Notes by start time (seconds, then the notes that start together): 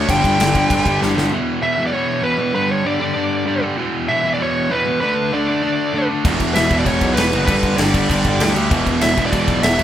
0.08 G1 G2 D3 G3 G5, kick, crash
0.23 G1 G2 D3 G3, kick, crash
0.38 G1 G2 D3 G3, snare, crash
0.53 G2 D3 G3, kick, crash
0.69 G1 G2 D3 G3, kick, crash
0.85 G1 G2 D3 G3, kick, crash
1.01 G1 G2 D3 G3, snare
1.16 G1 G2 D3 G3, snare
1.32 E2 B2 E3
1.61 E2 B2 E3 E5
1.77 E2 B2 E3
1.86 D5
1.92 E2 B2 E3 C#5
2.23 E2 B2 E3 B4
2.38 E2 B2 E3
2.54 G2 D3 G3 B4
2.71 C#5
2.84 G2 D3 G3 D5
3.00 G2 D3 G3
3.15 G2 D3 G3
3.46 G2 D3 G3
3.62 G2 D3 G3
3.77 E2 B2 E3
4.09 E2 B2 E3 E5
4.24 E2 B2 E3
4.34 D5
4.40 E2 B2 E3 C#5
4.70 E2 B2 E3 B4
4.85 E2 B2 E3
5.01 D3 A3 D4 B4
5.32 D3 A3 D4 D5
5.48 D3 A3 D4
5.62 D3 A3 D4
5.93 D3 A3 D4
6.09 D3 A3 D4
6.25 E1 E2 B2 E3, kick, crash
6.40 E1, kick, crash
6.55 E1 E2 B2 E3 E5, snare, crash
6.70 E1 E2 B2 E3, kick, crash
6.79 D5
6.84 E1 E2 B2 E3 C#5, kick, crash
7.01 B1, kick, crash
7.14 E1 E2 B2 E3 B4, crash
7.18 snare
7.32 F#1 E2 B2 E3, crash
7.46 G1 G2 D3 G3 B4, kick, crash
7.63 kick, crash
7.76 G1 G2 D3 G3 D5, snare, crash
7.94 G2 D3 G3, kick, crash
8.09 G1 G2 D3 G3, kick, crash
8.24 G1, kick, crash
8.39 D2 G2 D3 G3, snare, crash
8.55 D2 G2 D3 G3, crash
8.70 E1 E2 B2 E3, kick, crash
8.87 E1, kick, crash
9.01 E1 E2 B2 E3 E5, snare, crash
9.16 E1 E2 B2 E3, kick, crash
9.26 D5
9.31 E1 E2 B2 E3, kick, crash
9.48 B1, kick, crash
9.61 E1 E2 B2 E3 E5, snare, crash
9.78 E2 B2 E3, crash